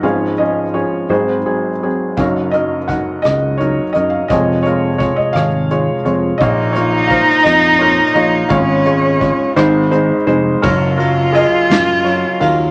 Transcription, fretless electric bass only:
\new Staff \with { instrumentName = "Fretless electric bass" } { \clef bass \time 6/8 \key ges \lydian \tempo 4. = 57 aes,4. aes,8 r4 | ges,4. des,4 ges,8 | f,4. aes,,4 f,8 | bes,,4. f,4 bes,,8 |
aes,,4. aes,,4 f,,8 | ges,,4. ges,4 ees,8 | }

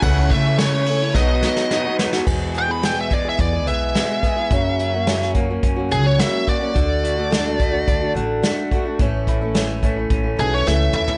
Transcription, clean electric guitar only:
\new Staff \with { instrumentName = "Clean electric guitar" } { \time 4/4 \key e \major \tempo 4 = 107 <cis e a cis' e'>8 <e a cis' e'>8 <cis e a cis' e'>16 <a cis' e'>8. <b, fis b dis' fis'>16 <b dis' fis'>16 <fis b dis' fis'>8 <b, fis b dis' fis'>16 <b dis' fis'>16 <fis b dis' fis'>16 <b dis' fis'>16 | e,8 gis'8 b8 gis8 b8 e8 gis8 gis'8 | fis,8 fis'8 cis'8 ais8 cis'8 fis8 ais8 fis'8 | d8 fis'8 d'8 a8 d'8 d8 a8 fis'8 |
a,8 e'8 cis'8 a8 cis'8 e8 a8 e'8 | }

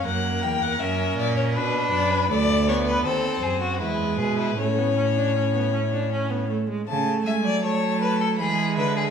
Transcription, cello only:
\new Staff \with { instrumentName = "Cello" } { \clef bass \time 3/4 \key fis \phrygian \tempo 4 = 79 fis,8 e,8 fis,8 ais,8 b,8 fis,8 | \key a \major d,4 dis,8 fis,8 e,8 b,8 | a,2~ a,8 r8 | cis8 gis16 fis4~ fis16 e8 d8 | }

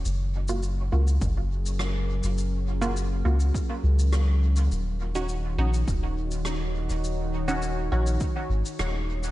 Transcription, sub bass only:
\new Staff \with { instrumentName = "Sub bass" } { \clef bass \time 4/4 \key ees \minor \tempo 4 = 103 ges,,4. des,8 ges,,4.~ ges,,16 ges,,16~ | ges,,4. des,8 r8 des,4. | ees,,4. bes,,8 ees,,4.~ ees,,16 ees,,16~ | ees,,4. bes,,8 r8 aes,,16 r16 ees,,4 | }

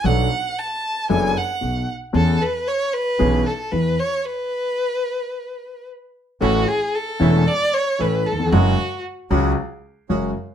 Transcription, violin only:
\new Staff \with { instrumentName = "Violin" } { \time 4/4 \key a \major \tempo 4 = 114 fis''4 a''4 gis''8 fis''4 r8 | a'8 b'8 cis''8 b'4 a'8 b'8 cis''8 | b'2. r4 | fis'8 gis'8 a'4 d''8 cis''8 b'8 a'8 |
fis'4 r2. | }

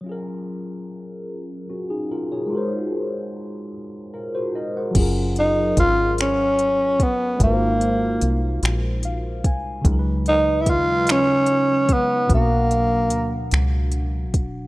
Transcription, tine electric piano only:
\new Staff \with { instrumentName = "Tine electric piano" } { \time 6/8 \key fis \major \tempo 4. = 49 << { r2 <cis' fis'>16 <dis' gis'>16 <eis' ais'>16 <gis' cis''>16~ | <gis' cis''>16 r4. r16 <eis' ais'>16 <fis' bis'>16 <ais' dis''>16 <bis' fis''>16~ | <bis' fis''>16 r2 r8. | r2 eis''8 gis''8 |
r2. | r2. | } \\ { <fis cis' eis' gis' ais'>2. | <gis dis' eis' fis' ais' bis'>2. | <fis cis' eis' gis' ais'>2. | <gis dis' eis' fis' ais' b' bis'>2. |
<cis fis gis dis' ais' b'>2. | <b, fis d' fis' fis''>2. | } >> }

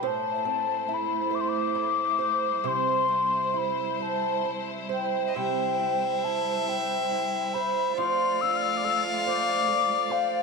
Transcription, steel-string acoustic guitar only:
\new Staff \with { instrumentName = "Steel-string acoustic guitar" } { \time 6/8 \key c \major \tempo 4. = 46 <a, c''>8 c'8 e'8 c''8 e'8 c''8 | <c c''>8 c'8 e'8 c''8 e'8 c''8 | <c c''>8 c'8 e'8 c''8 e'8 c''8 | <f c''>8 d'8 a'8 c''8 a'8 c''8 | }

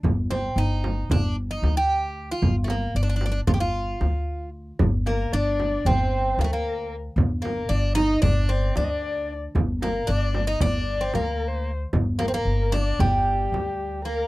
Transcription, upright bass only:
\new Staff \with { instrumentName = "Upright bass" } { \clef bass \time 9/8 \tempo 4. = 76 g,,4 g,,4 g,,4 d,4. | g,,4 g,,4 g,,4 d,4. | g,,4 g,,4 g,,4 d,4. | g,,4 g,,4 g,,4 d,4. |
g,,4 g,,4 g,,4 d,4. | g,,4 g,,4 g,,4 d,4. | }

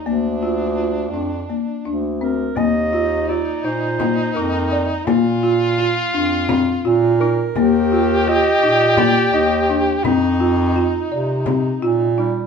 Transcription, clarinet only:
\new Staff \with { instrumentName = "Clarinet" } { \time 7/8 \key bes \major \tempo 4 = 84 r2. bes'8 | ees''4 d''8 c''4 bes'8. r16 | r2. bes'8~ | bes'4 ees''4 d''8 ees''8. r16 |
r2. g8 | }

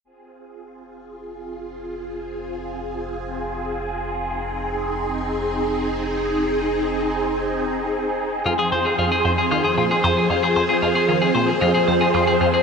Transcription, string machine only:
\new Staff \with { instrumentName = "String machine" } { \time 4/4 \key f \minor \tempo 4 = 114 << { <c' aes'>1~ | <c' aes'>1~ | <c' aes'>1~ | <c' aes'>1 |
<f, f c' c''>1~ | <f, f c' c''>1 | } \\ { f'1~ | f'1 | ees'1~ | ees'1 |
aes'1~ | aes'1 | } >> }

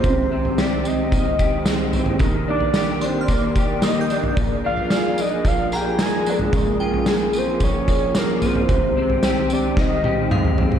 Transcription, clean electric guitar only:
\new Staff \with { instrumentName = "Clean electric guitar" } { \time 4/4 \key aes \lydian \tempo 4 = 111 c8 c'8 g'8 c'8 ees8 g'8 aes8 c'8 | ees8 d'8 g'8 d'8 bes8 g'8 bes8 d'8 | bes,8 d'8 aes'8 d'8 f8 aes'8 aes8 d'8 | des8 f'8 aes'8 f'8 f8 aes'8 bes8 f'8 |
c8 c'8 g'8 c'8 ees8 g'8 aes8 c'8 | }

